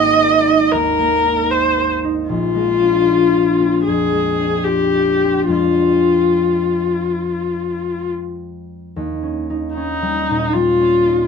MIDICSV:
0, 0, Header, 1, 3, 480
1, 0, Start_track
1, 0, Tempo, 783290
1, 1403, Time_signature, 4, 2, 24, 8
1, 2851, Tempo, 862069
1, 5251, Tempo, 791557
1, 6653, End_track
2, 0, Start_track
2, 0, Title_t, "Viola"
2, 0, Program_c, 0, 41
2, 0, Note_on_c, 0, 75, 63
2, 439, Note_on_c, 0, 70, 62
2, 449, Note_off_c, 0, 75, 0
2, 924, Note_on_c, 0, 72, 53
2, 934, Note_off_c, 0, 70, 0
2, 1166, Note_off_c, 0, 72, 0
2, 1404, Note_on_c, 0, 65, 59
2, 2336, Note_off_c, 0, 65, 0
2, 2367, Note_on_c, 0, 68, 50
2, 2845, Note_on_c, 0, 67, 52
2, 2854, Note_off_c, 0, 68, 0
2, 3325, Note_off_c, 0, 67, 0
2, 3329, Note_on_c, 0, 65, 43
2, 4760, Note_off_c, 0, 65, 0
2, 5728, Note_on_c, 0, 63, 49
2, 6203, Note_on_c, 0, 65, 53
2, 6212, Note_off_c, 0, 63, 0
2, 6653, Note_off_c, 0, 65, 0
2, 6653, End_track
3, 0, Start_track
3, 0, Title_t, "Harp"
3, 0, Program_c, 1, 46
3, 0, Note_on_c, 1, 32, 49
3, 0, Note_on_c, 1, 56, 35
3, 0, Note_on_c, 1, 58, 36
3, 0, Note_on_c, 1, 63, 39
3, 0, Note_on_c, 1, 67, 39
3, 0, Note_on_c, 1, 68, 35
3, 130, Note_on_c, 1, 70, 39
3, 283, Note_off_c, 1, 63, 0
3, 290, Note_on_c, 1, 63, 39
3, 447, Note_on_c, 1, 39, 37
3, 597, Note_off_c, 1, 58, 0
3, 604, Note_on_c, 1, 58, 38
3, 758, Note_off_c, 1, 63, 0
3, 765, Note_on_c, 1, 63, 38
3, 917, Note_off_c, 1, 67, 0
3, 924, Note_on_c, 1, 67, 39
3, 1078, Note_off_c, 1, 70, 0
3, 1085, Note_on_c, 1, 70, 35
3, 1143, Note_off_c, 1, 56, 0
3, 1244, Note_off_c, 1, 63, 0
3, 1251, Note_on_c, 1, 63, 37
3, 1404, Note_on_c, 1, 34, 43
3, 1421, Note_off_c, 1, 67, 0
3, 1425, Note_off_c, 1, 32, 0
3, 1425, Note_off_c, 1, 63, 0
3, 1426, Note_off_c, 1, 39, 0
3, 1563, Note_on_c, 1, 56, 35
3, 1610, Note_off_c, 1, 68, 0
3, 1724, Note_on_c, 1, 62, 35
3, 1895, Note_on_c, 1, 65, 41
3, 2049, Note_off_c, 1, 62, 0
3, 2056, Note_on_c, 1, 62, 32
3, 2207, Note_on_c, 1, 60, 38
3, 2373, Note_on_c, 1, 41, 31
3, 2523, Note_off_c, 1, 56, 0
3, 2531, Note_on_c, 1, 56, 31
3, 2683, Note_off_c, 1, 62, 0
3, 2690, Note_on_c, 1, 62, 28
3, 2847, Note_off_c, 1, 65, 0
3, 2854, Note_on_c, 1, 65, 33
3, 2981, Note_off_c, 1, 58, 0
3, 3006, Note_off_c, 1, 62, 0
3, 3013, Note_on_c, 1, 62, 26
3, 3171, Note_off_c, 1, 60, 0
3, 3177, Note_on_c, 1, 60, 35
3, 3302, Note_off_c, 1, 41, 0
3, 3306, Note_off_c, 1, 56, 0
3, 3309, Note_on_c, 1, 41, 33
3, 3312, Note_off_c, 1, 60, 0
3, 3313, Note_on_c, 1, 56, 27
3, 3316, Note_off_c, 1, 62, 0
3, 3319, Note_on_c, 1, 60, 26
3, 3323, Note_off_c, 1, 65, 0
3, 3323, Note_on_c, 1, 62, 26
3, 3330, Note_on_c, 1, 65, 24
3, 3349, Note_off_c, 1, 70, 0
3, 3351, Note_off_c, 1, 34, 0
3, 5251, Note_on_c, 1, 39, 38
3, 5259, Note_off_c, 1, 41, 0
3, 5261, Note_off_c, 1, 56, 0
3, 5264, Note_off_c, 1, 60, 0
3, 5266, Note_off_c, 1, 62, 0
3, 5412, Note_on_c, 1, 61, 33
3, 5524, Note_off_c, 1, 65, 0
3, 5577, Note_on_c, 1, 63, 30
3, 5731, Note_off_c, 1, 61, 0
3, 5739, Note_on_c, 1, 61, 36
3, 5894, Note_on_c, 1, 55, 33
3, 6062, Note_on_c, 1, 46, 35
3, 6208, Note_off_c, 1, 55, 0
3, 6215, Note_on_c, 1, 55, 31
3, 6360, Note_off_c, 1, 61, 0
3, 6367, Note_on_c, 1, 61, 38
3, 6518, Note_off_c, 1, 63, 0
3, 6525, Note_on_c, 1, 63, 35
3, 6653, Note_off_c, 1, 39, 0
3, 6653, Note_off_c, 1, 46, 0
3, 6653, Note_off_c, 1, 55, 0
3, 6653, Note_off_c, 1, 61, 0
3, 6653, Note_off_c, 1, 63, 0
3, 6653, End_track
0, 0, End_of_file